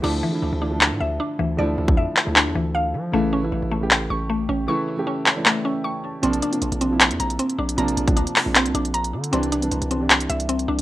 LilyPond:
<<
  \new Staff \with { instrumentName = "Synth pluck" } { \time 4/4 \key a \phrygian \tempo 4 = 155 d'8 e4 d'4 e''8 d'8 e8 | d''4 e''4 d'8 e8 f''4 | a8 cis'4 a4 cis'''8 a8 cis'8 | cis'''4 cis'4 a8 cis'8 cis'''4 |
c'8 d'4 c'4 bes''8 c'8 d'8 | bes''4 d'4 c'8 d'8 bes''4 | c'8 d'4 c'4 e''8 c'8 d'8 | }
  \new Staff \with { instrumentName = "Grand piano" } { \time 4/4 \key a \phrygian r1 | r1 | r1 | r4. cis''16 d''16 e''8 e''8 g''8 a''8 |
r1 | r1 | r1 | }
  \new Staff \with { instrumentName = "Grand piano" } { \clef bass \time 4/4 \key a \phrygian <d f a e'>8 r16 <d f a e'>8 r16 <d f a e'>16 <d f a d'>4.~ <d f a d'>16 r8 | <d f a e'>8 r16 <d f a e'>8. r16 <d f a e'>4.~ <d f a e'>16 r8 | <cis e a e'>8 r16 <cis e a e'>8 r16 <cis e a e'>16 <cis e a g'>4.~ <cis e a g'>16 r8 | <cis e a e'>8 r16 <cis e a g'>8. r16 <cis e a e'>4.~ <cis e a e'>16 r8 |
<c f bes d'>8 r16 <c f bes d'>8 r16 <c f bes d'>16 <c f bes e'>4.~ <c f bes e'>16 r8 | <c f bes d'>8 r16 <c f bes d'>8. r16 <c f bes d'>4.~ <c f bes d'>16 r8 | <c e g d'>8 r16 <c e g d'>8 r16 <c e g d'>16 <c e g d'>4.~ <c e g d'>16 r8 | }
  \new Staff \with { instrumentName = "808-style bass" } { \clef bass \time 4/4 \key a \phrygian d,8 r8 d,16 d,4 a,16 d,8 r8 d,8 | d,8 d,8 f,16 r8 d,8 e,16 d,4 f8 | a,,4 a,,16 a,,4~ a,,16 a,,4 a,,8 | r1 |
bes,,8 r8 bes,,16 bes,,4 f,16 bes,,8 r8 bes,,8 | bes,,8 bes,,8 d,16 r8 bes,,8 c,16 bes,,4 d8 | c,4 c,16 c,4~ c,16 c,4 c,8 | }
  \new DrumStaff \with { instrumentName = "Drums" } \drummode { \time 4/4 cymc4 r4 hc4 r4 | r8. bd16 r8 hc8 hc4 r4 | r4 r4 hc4 r4 | r4 r8 hc8 hc4 r4 |
hh16 hh16 hh16 hh16 hh16 hh16 hh8 <hc hh>16 hh16 hh16 hh16 hh16 hh8 hh16 | hh16 hh16 hh16 <hh bd>16 hh16 hh16 <hc hho>8 <hc hh>16 hh16 hh16 hh16 hh16 hh8 hh16 | hh16 hh16 hh16 hh16 hh16 hh16 hh8 <hc hh>16 hh16 hh16 hh16 hh16 hh8 hh16 | }
>>